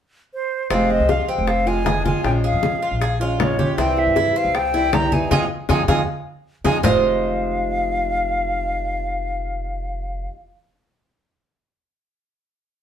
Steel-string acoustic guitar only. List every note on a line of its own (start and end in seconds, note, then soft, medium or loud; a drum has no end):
0.70 1.47 C3 medium
0.70 1.47 F3 medium
0.70 1.48 G#3 medium
0.70 1.47 C4 medium
0.70 1.48 F4 medium
1.48 muted steel-string acoustic guitar stroke medium
1.66 1.84 F3 medium
1.66 1.85 G#3 medium
1.66 1.85 C4 medium
1.66 1.85 F4 medium
1.85 2.04 F3 soft
1.85 2.04 G#3 soft
1.85 2.04 C4 medium
1.85 2.03 F4 medium
2.05 2.22 F3 medium
2.05 2.23 G#3 soft
2.05 2.24 C4 medium
2.05 2.23 F4 medium
2.23 2.99 F3 medium
2.23 3.00 G#3 medium
2.23 3.00 C#4 medium
2.23 3.00 F4 medium
3.01 muted steel-string acoustic guitar stroke medium
3.20 3.38 G#3 medium
3.20 3.38 C#4 medium
3.20 3.39 F4 medium
3.38 3.58 F3 soft
3.38 3.58 G#3 medium
3.38 3.58 C#4 medium
3.38 3.57 F4 medium
3.58 3.78 G#3 medium
3.58 3.77 C#4 medium
3.58 3.77 F4 medium
3.77 4.53 C3 medium
3.77 4.54 E3 medium
3.77 4.54 G3 medium
3.77 4.55 C4 medium
3.77 4.55 E4 medium
4.55 muted steel-string acoustic guitar stroke medium
4.74 4.91 E3 medium
4.74 4.92 G3 medium
4.74 4.92 C4 medium
4.74 4.92 E4 medium
4.92 5.11 E3 medium
4.92 5.11 G3 medium
4.92 5.11 C4 medium
4.92 5.11 E4 medium
5.12 5.31 E3 medium
5.12 5.31 G3 medium
5.12 5.31 C4 medium
5.12 5.30 E4 medium
5.31 5.44 F3 medium
5.31 5.44 G#3 medium
5.31 5.44 C4 medium
5.69 5.82 F3 medium
5.69 5.82 G#3 loud
5.69 5.82 C4 medium
5.88 6.01 F3 medium
5.88 6.01 G#3 medium
5.88 6.01 C4 medium
6.64 6.77 F3 medium
6.64 6.77 G#3 medium
6.64 6.77 C4 medium
6.83 10.33 F2 medium
6.83 10.34 C3 medium
6.83 10.34 D#3 medium
6.83 10.35 G#3 medium
6.83 10.35 C4 medium
6.83 10.36 F4 medium